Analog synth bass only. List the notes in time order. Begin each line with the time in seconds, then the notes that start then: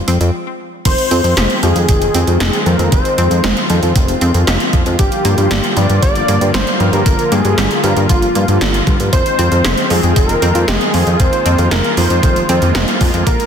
0.08 F2
0.21 F2
0.85 F1
1.11 F2
1.24 F2
1.37 F1
1.63 F2
1.76 F2
1.89 F1
2.14 F2
2.27 F2
2.40 F1
2.66 F2
2.79 F2
2.92 F1
3.18 F2
3.31 F2
3.44 F1
3.70 F2
3.83 F2
3.96 F1
4.21 F2
4.34 F2
4.47 F1
4.73 F2
4.86 F2
4.99 G1
5.25 G2
5.38 G2
5.51 G1
5.77 G2
5.90 G2
6.02 G1
6.28 G2
6.41 G2
6.54 G1
6.80 G2
6.93 G2
7.06 G1
7.32 G2
7.45 G2
7.58 G1
7.84 G2
7.97 G2
8.09 G1
8.35 G2
8.48 G2
8.61 G1
8.87 G2
9.00 G2
9.13 F1
9.39 F2
9.52 F2
9.65 F1
9.90 F2
10.03 F2
10.16 F1
10.42 F2
10.55 F2
10.68 F1
10.94 F2
11.07 F2
11.20 F1
11.46 F2
11.59 F2
11.72 F1
11.97 F2
12.10 F2
12.23 F1
12.49 F2
12.62 F2
12.75 F1
13.01 F2
13.14 F2
13.27 A#1